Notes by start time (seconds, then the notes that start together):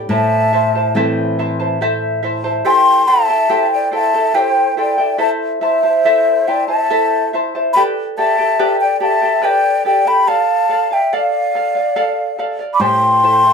0.09 A2 E4 A4 C5 E5 A5
0.53 E4 C5 E5 A5
0.75 E4 C5 A5
0.95 E3 A3 C4 E4 A4 C5 E5 A5
1.39 E4 C5 E5 A5
1.60 E4 C5 A5
1.81 E4 A4 C5 E5 A5
2.23 E4 C5 E5 A5
2.44 E4 C5 A5
2.65 E4 G4 A4 C5 G5 G#5 C6
2.70 G5
3.08 E4 A4 C5 E5 G5 A5
3.29 E4 A4 G5
3.49 E4 G4 A4 C5 G5
3.72 D5 G5
3.92 E4 A4 C5 F5 G5 A5
3.98 E5
4.14 E4 A4 G5
4.34 E4 G4 A4 C5 C#5 G5
4.41 C5
4.77 E4 A4 C5 D5 G5
4.98 E4 A4 G5
5.18 E4 A4 C5 E5 A5
5.22 E5
5.61 E4 C5 E5 A5
5.83 E4 C5 A5
6.05 E4 A4 C5 E5 A5
6.47 E4 C5 D5 E5 G5 A5
6.68 E4 C5 E5 A5
6.90 E4 A4 C5 E5 A5
7.33 E4 C5 E5 A5
7.55 E4 C5 A5
7.73 G4 A4 B4 D5 G5 B5
8.18 G4 A4 D5 E5 G5 A5
8.38 G4 A4 G5
8.59 G4 A4 B4 D5 G5
8.81 D5 G5
9.00 G4 A4 D5 F5 G5 A5
9.07 E5
9.22 G4 A4 G5
9.42 G4 A4 B4 D5 D#5 G5
9.49 D5
9.85 G4 A4 D5 D#5 G5
9.91 D5
10.05 G4 A4 G5 B5
10.27 A4 D5 F5 A5
10.69 A4 D5 F5
10.91 D5 E5 F5 G5
11.13 A4 D5 D#5 F5
11.18 D5
11.55 A4 D5 F5
11.75 D5 F5
11.96 A4 D5 F5
12.38 A4 D5 F5
12.59 D5 F5
12.73 B5 D6
12.80 A2 E4 G4 A4 C5 G#5 A5 C6
12.85 G5
13.23 E4 A4 C5 A5
13.44 E4 A4 A5